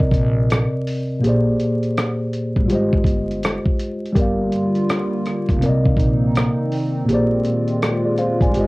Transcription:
0.00 1.18 C3 medium
0.00 1.19 C4 medium
0.00 1.20 A#4 medium
0.00 1.21 D5 medium
0.00 1.22 D#5 medium
0.00 kick medium
0.11 0.63 A#1 medium
0.11 kick medium
0.11 closed hi-hat medium
0.50 cross-stick loud
0.50 closed hi-hat medium
0.87 open hi-hat medium
1.20 2.64 A#2 medium
1.20 2.65 A#3 medium
1.20 2.66 G4 medium
1.24 1.54 A#1 loud
1.24 2.67 G#4 medium
1.24 2.68 C5 medium
1.24 closed hi-hat medium
1.29 2.69 D5 medium
1.60 closed hi-hat medium
1.83 closed hi-hat soft
1.98 cross-stick loud
1.98 closed hi-hat medium
2.33 closed hi-hat medium
2.56 2.67 G#1 medium
2.56 kick medium
2.66 2.76 G3 medium
2.66 4.12 F4 medium
2.70 3.01 G#1 medium
2.70 4.14 G#3 medium
2.70 4.13 G4 medium
2.70 4.14 C5 medium
2.70 closed hi-hat medium
2.75 4.16 D#5 medium
2.93 kick medium
3.04 3.56 G1 medium
3.04 kick medium
3.04 closed hi-hat medium
3.31 closed hi-hat soft
3.43 cross-stick loud
3.43 closed hi-hat medium
3.65 kick medium
3.79 closed hi-hat medium
4.06 closed hi-hat soft
4.12 4.47 G1 medium
4.12 5.60 D3 medium
4.12 5.57 G3 medium
4.12 5.60 G3 medium
4.12 7.05 A#3 medium
4.12 5.60 F4 loud
4.12 5.59 G4 medium
4.12 kick loud
4.12 closed hi-hat medium
4.17 5.59 A#4 medium
4.17 5.61 D5 medium
4.22 5.62 F5 medium
4.52 closed hi-hat medium
4.75 closed hi-hat soft
4.89 cross-stick loud
4.89 closed hi-hat medium
5.26 cross-stick soft
5.26 closed hi-hat medium
5.49 5.64 F1 medium
5.49 kick medium
5.49 closed hi-hat soft
5.58 7.03 C3 medium
5.58 8.51 D#3 medium
5.58 8.51 C4 medium
5.58 7.05 C4 medium
5.58 7.06 D#4 medium
5.58 closed hi-hat medium
5.63 5.93 C2 medium
5.63 7.06 A#4 medium
5.63 7.07 D5 medium
5.68 7.09 D#5 medium
5.85 kick medium
5.97 6.48 A#1 medium
5.97 kick medium
5.97 closed hi-hat medium
6.35 cross-stick loud
6.35 closed hi-hat medium
6.72 open hi-hat medium
7.05 7.39 A#1 medium
7.05 8.50 A#2 medium
7.05 8.67 G#3 medium
7.05 8.51 A#3 medium
7.05 8.67 F4 medium
7.05 7.80 G4 medium
7.09 7.81 G#4 medium
7.09 7.82 C5 medium
7.09 closed hi-hat medium
7.14 7.83 D5 medium
7.45 closed hi-hat medium
7.68 closed hi-hat soft
7.82 cross-stick medium
7.82 closed hi-hat medium
8.05 8.18 G#4 medium
8.05 8.18 D5 medium
8.18 8.41 C5 medium
8.18 8.40 F5 medium
8.18 closed hi-hat medium
8.41 8.52 G#1 medium
8.41 8.67 D5 soft
8.41 8.67 G#5 medium
8.41 kick medium
8.41 closed hi-hat soft
8.51 8.67 F3 medium
8.51 8.67 G#3 medium
8.51 8.67 D#4 medium
8.51 8.67 F4 medium
8.51 closed hi-hat medium
8.55 8.67 G#1 medium
8.55 8.67 G4 medium
8.55 8.67 C5 medium
8.60 8.67 D#5 medium

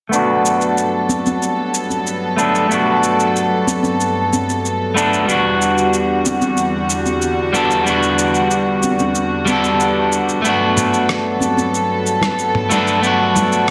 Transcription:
0.09 2.33 A3 medium
0.09 2.34 B3 medium
0.09 5.25 A4 medium
0.09 shaker soft
0.13 5.25 G2 medium
0.13 5.25 F#3 medium
0.13 5.25 B3 medium
0.13 2.35 D4 medium
0.13 2.36 F#4 medium
0.46 shaker medium
0.61 shaker soft
0.78 shaker soft
1.09 high conga medium
1.09 shaker medium
1.26 high conga medium
1.26 shaker soft
1.42 shaker soft
1.74 shaker medium
1.90 high conga soft
1.90 shaker soft
2.07 shaker soft
2.36 2.66 A3 medium
2.36 2.67 B3 medium
2.36 2.67 D4 medium
2.36 2.68 A4 medium
2.36 shaker medium
2.55 shaker soft
2.67 4.91 A3 medium
2.67 4.92 B3 medium
2.67 shaker soft
2.72 4.93 D4 medium
2.72 4.94 F#4 medium
3.03 shaker medium
3.20 shaker soft
3.36 shaker soft
3.67 high conga medium
3.67 shaker medium
3.83 high conga medium
3.83 shaker soft
4.01 shaker soft
4.33 high conga medium
4.33 shaker medium
4.50 shaker soft
4.66 shaker soft
4.94 5.24 A3 medium
4.94 5.24 B3 medium
4.94 5.25 D4 medium
4.94 5.26 A4 medium
4.94 shaker medium
5.14 shaker soft
5.25 7.49 G3 medium
5.25 7.50 B3 medium
5.25 shaker soft
5.30 10.41 E2 medium
5.30 10.41 D3 medium
5.30 10.42 G3 medium
5.30 7.51 D4 medium
5.30 10.41 F#4 medium
5.30 7.53 F#4 medium
5.62 shaker medium
5.78 shaker soft
5.94 shaker soft
6.26 high conga medium
6.26 shaker medium
6.42 high conga medium
6.42 shaker soft
6.57 shaker soft
6.90 shaker medium
7.06 high conga medium
7.06 shaker soft
7.22 shaker soft
7.53 7.82 G3 medium
7.53 7.83 B3 medium
7.53 7.83 D4 medium
7.53 7.84 A4 medium
7.53 shaker medium
7.71 shaker soft
7.84 9.43 G3 medium
7.84 9.44 B3 medium
7.84 shaker soft
7.88 9.46 D4 medium
7.88 9.47 F#4 medium
8.03 shaker soft
8.19 shaker medium
8.35 shaker soft
8.51 shaker soft
8.83 high conga medium
8.83 shaker medium
8.99 high conga medium
8.99 shaker soft
9.15 shaker soft
9.45 10.40 G3 medium
9.45 10.41 B3 medium
9.45 high conga medium
9.45 shaker medium
9.49 10.42 D4 medium
9.49 10.43 A4 medium
9.64 shaker soft
9.80 shaker soft
10.12 shaker medium
10.29 shaker soft
10.42 13.71 G2 medium
10.42 13.71 F#3 medium
10.42 12.65 A3 medium
10.42 13.71 B3 medium
10.42 12.67 B3 medium
10.42 13.71 A4 medium
10.42 shaker soft
10.46 12.68 D4 medium
10.46 12.69 F#4 medium
10.77 mid tom medium
10.77 shaker medium
10.94 shaker soft
11.09 cross-stick medium
11.09 shaker soft
11.40 high conga medium
11.40 shaker medium
11.57 high conga medium
11.57 shaker soft
11.75 shaker soft
12.07 shaker medium
12.21 cross-stick medium
12.21 high conga soft
12.21 low conga medium
12.21 shaker soft
12.39 shaker soft
12.55 mid tom medium
12.69 12.99 A3 medium
12.69 12.99 B3 medium
12.69 13.00 D4 medium
12.69 13.00 A4 medium
12.69 low conga medium
12.69 shaker medium
12.88 shaker soft
13.00 13.71 A3 medium
13.00 13.71 B3 medium
13.00 shaker soft
13.04 13.71 D4 medium
13.04 13.71 F#4 medium
13.36 low conga medium
13.36 shaker medium
13.52 shaker soft

